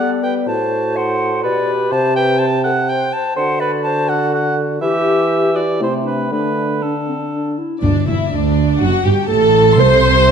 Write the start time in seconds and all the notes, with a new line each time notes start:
Already playing: G3 B3
0.00 A4
0.23 B4 G5
0.47 A2 F#4 C5 A5
0.96 C5 F#5
1.43 B2 G4 B4 D5
1.92 C3 C5 A5
2.16 B4 G5
2.39 C5 A5
2.64 A4 F#5
2.89 C5 G5
3.13 C5 A5
3.36 D3 F#4 C5 F#5
3.60 B4 D5
3.84 C5 A5
4.09 A4 F#5
4.32 A4 F#5
4.81 E3 G4 E5
5.54 F#4 D5
5.80 C3 A3 E4 C5
6.04 D4 B4
6.30 D3 A3 D4 B4
6.82 D4 A4
7.08 C4
7.33 D4
7.59 E4
7.83 D2 G2 D4 D5
8.07 E1 E2 E4 E5
8.31 D2 D4 D5
8.79 F#1 F#2 F#4 F#5
9.04 G1 G2 G4 G5
9.27 A1 A2 A4 A5
9.31 A4
9.75 C2 C3 C5 C6